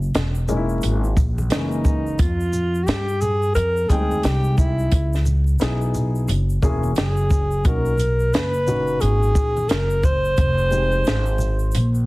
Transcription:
Already playing: F#1
0.02 shaker
0.15 E1, snare, closed hi-hat, shaker
0.35 shaker
0.48 G#3 A#3 C#4 D#4, low conga, shaker
0.57 E4
0.69 shaker
0.81 G#1, closed hi-hat, shaker
1.04 shaker
1.17 A#1, kick, shaker
1.38 high conga, shaker
1.50 F#1 E3 G#3 A#3 C#4 D#4, snare, closed hi-hat, shaker
1.72 shaker
1.84 kick, low conga, shaker
2.07 shaker
2.18 F2 F4, kick, closed hi-hat, shaker
2.40 shaker
2.53 low conga, shaker
2.75 shaker
2.83 F#4 G4
2.87 G2, snare, closed hi-hat, shaker
3.08 shaker
3.21 G#4, low conga, shaker
3.42 shaker
3.55 F2 A#4, closed hi-hat, shaker
3.77 shaker
3.88 D2 G3 C4 D#4 G#4 G5, kick, closed hi-hat, shaker
3.96 G#3
4.11 high conga, shaker
4.23 C2 G4, snare, closed hi-hat, shaker
4.44 shaker
4.57 E4, kick, low conga, shaker
4.79 shaker
4.92 C#2, kick, closed hi-hat, shaker
5.13 snare, shaker
5.25 low conga, shaker
5.47 shaker
5.59 B1 B3 D#4 E4 G#4, snare, closed hi-hat, shaker
5.81 shaker
5.94 low conga, shaker
6.15 shaker
6.28 F#1, closed hi-hat, shaker
6.50 shaker
6.62 E1 A#3 C#4 E4 G#4, kick, shaker
6.83 high conga, shaker
6.95 F#1 G#4, snare, closed hi-hat, shaker
7.17 shaker
7.30 kick, low conga, shaker
7.32 shaker
7.51 shaker
7.64 B1 A#3 C#4 D#4 F#4 A#4, kick, closed hi-hat, shaker
7.86 shaker
7.98 closed hi-hat, low conga, shaker
7.99 shaker
8.20 shaker
8.33 F#1 B4, snare, closed hi-hat, shaker
8.54 shaker
8.66 A#2 C#4 D#4 F#4, low conga, shaker
8.87 shaker
9.01 G#1 G#4, closed hi-hat, shaker
9.23 shaker
9.35 A#1, kick, shaker
9.57 high conga, shaker
9.69 F#1 A#4, snare, closed hi-hat, shaker
9.90 shaker
10.03 C5, kick, low conga, shaker
10.25 shaker
10.37 F1, kick, closed hi-hat, shaker
10.58 shaker
10.71 G#3 C4 D#4, low conga, shaker
10.72 G4, shaker
10.92 shaker
11.04 G#1, snare, closed hi-hat, shaker
11.26 shaker
11.38 low conga, shaker
11.40 shaker
11.59 shaker
11.72 A#1, closed hi-hat, shaker
11.95 shaker

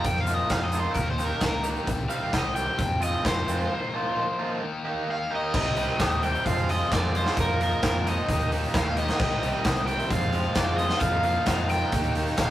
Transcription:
0.04 F2 F3 A#3 D#4 F4 G5, kick, closed hi-hat, shaker
0.16 snare
0.21 F5
0.27 F3 D#4 F4, closed hi-hat, shaker
0.31 A#3 D#5
0.49 F2 F3 A#3 D#4 F4 F5, kick, snare, closed hi-hat, shaker
0.64 D#5
0.72 F3 A#3 D#4 F4, closed hi-hat, shaker
0.80 C5
0.94 D#2 D#3 A#3 A#4, kick, closed hi-hat, shaker
0.99 D#4 G4
1.11 C5
1.18 D#3 A#3 D#4 G4, closed hi-hat, shaker
1.26 A#4
1.40 C#2 D#3 A#3 D#4 G4 A#4, kick, snare, closed hi-hat, shaker
1.63 D#3 A#3 D#4 G4, closed hi-hat, shaker
1.76 shaker
1.87 C2 C3 D#3 G3 C4 G4, kick, closed hi-hat, shaker
2.09 D#3 G3 C4 G4 F5, closed hi-hat, shaker
2.32 C2 D#3 G3 C4 G4 D#5, kick, snare, closed hi-hat, shaker
2.55 D#3 G3 C4 G4 G5, closed hi-hat, shaker
2.78 F2 C3 F3 G#3 C4 F4, kick, closed hi-hat, shaker
3.02 F3 G#3 C4 F4 D#5, closed hi-hat, shaker
3.25 F2 F3 G#3 C4 C5, kick, snare, closed hi-hat, shaker
3.29 F4
3.47 F2 F3 G#3 C4 F4, closed hi-hat, shaker
3.71 F3 A#3 D#4 F4
3.93 F3 A#3 D#4 F4
4.16 F3 A#3 D#4 F4
4.39 F3 A#3 D#4 F4
4.61 D#3 A#3 D#4 G4
4.84 D#3 A#3 D#4 G4
5.07 D#3 A#3 D#4 G4 F5
5.31 D#3 A#3 D#4 G4
5.35 D#5
5.54 C2 C3 D#3 G3 C4 G4 A#4 D#5 G5 C6, kick, crash
5.76 C3 D#3 G3 C4 G4, closed hi-hat
5.99 D#2 C3 D#3 G3 C4 G4, kick, snare, closed hi-hat
6.11 closed hi-hat
6.23 C3 D#3 G3 C4 G4 G5, closed hi-hat
6.35 closed hi-hat
6.45 F2 C3 F3 G#3 C4 F4 G#4 C5 F5, kick, closed hi-hat
6.58 closed hi-hat
6.68 F2 C3 F3 G#3 C4 F4 G#4 D#5, closed hi-hat
6.91 F2 C3 F3 G#3 C4 F4 G#4 D5, kick, snare, closed hi-hat
7.15 F2 C3 F3 G#3 C4 F4 G#4 C5, closed hi-hat
7.26 snare
7.37 F2 F3 A#3 D#4 F4 A#4 D#5 A#5, kick, closed hi-hat
7.59 F3 A#3 D#4 F4 A#4, closed hi-hat
7.82 F2 F3 A#3 D#4 F4, kick, snare, closed hi-hat
8.06 F3 A#3 D#4 F4 D#5, closed hi-hat
8.29 D#2 D#3 A#3 D#4 G4 A#5, kick, closed hi-hat
8.40 closed hi-hat
8.52 D#3 A#3 D#4 G4, closed hi-hat
8.64 closed hi-hat
8.74 D#2 D#3 A#3 D#4 G4 F5, kick, snare, closed hi-hat
8.96 D#3 A#3 D#4 G4 D#5, closed hi-hat
9.08 snare, closed hi-hat
9.19 C2 C3 D#3 G3 C4 G4 C5, kick, crash
9.42 C3 D#3 G3 C4 G4, closed hi-hat
9.64 C2 C3 D#3 G3 C4 G4, kick, snare, closed hi-hat
9.76 closed hi-hat
9.87 C3 D#3 G3 C4 G4 G5, closed hi-hat
9.99 closed hi-hat
10.10 F2 C3 F3 G#3 C4 F4 G#4 F5 C6, kick, closed hi-hat
10.21 closed hi-hat
10.33 F2 C3 F3 G#3 C4 F4, closed hi-hat
10.55 F2 C3 F3 G#3 C4 D5, kick, snare, closed hi-hat
10.60 F4
10.78 F2 C3 F3 G#3 C4 F4 D#5, closed hi-hat
10.89 snare
11.00 F2 F3 A#3 D#4 A#4 F5 A#5, kick, closed hi-hat
11.04 F4
11.23 F3 A#3 D#4 F4 F5, closed hi-hat
11.46 F2 F3 A#3 D#4 F4, kick, snare, closed hi-hat
11.69 F3 A#3 D#4 F4 G5, closed hi-hat
11.92 D#2 D#3 A#3 D#4 G4 A#4 G5 A#5, kick, closed hi-hat
12.04 closed hi-hat
12.15 D#3 A#3 D#4 G4, closed hi-hat
12.27 closed hi-hat
12.37 A#1 D#3 A#3 D#4 G4 F5, kick, snare, closed hi-hat

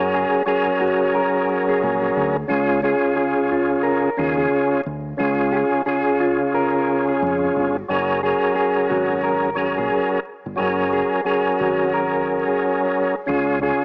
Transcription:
Already playing: F#1 F#3 C#4 G#4 A#4
0.14 G#4
0.46 F#3 C#4 G#4 A#4
0.81 F#4
1.15 A#4
1.69 G#4
1.83 A#1
2.17 D2
2.48 C#2 C#3 C#4 F4 G#4
2.83 C#3 C#4 F4 G#4
3.17 G#4
3.52 F4
3.83 A#4
4.17 D#2 C#3 C#4 F4 G#4
4.38 G#4
4.86 D2
5.17 C#2 C#3 C#4 F4 G#4
5.52 G#4
5.86 C#3 C#4 F4 G#4
6.20 F4
6.54 A#4
7.09 G#4
7.22 F2
7.56 G1
7.88 F#1 F#3 C#4 G#4 A#4
8.23 F#3 C#4 G#4 A#4
8.55 G#4
8.90 G#1 F#4
9.23 A#4
9.55 F#3 C#4 G#4 A#4
9.78 A#1 G#4
10.46 G1
10.56 F#1 F#3 C#4 G#4 A#4
10.93 G#4
11.24 F#3 C#4 G#4 A#4
11.60 G#1 F#4
11.94 A#4
12.48 G#4
13.26 C#2 C#3 C#4 F4 G#4
13.61 C#3 C#4 F4 G#4

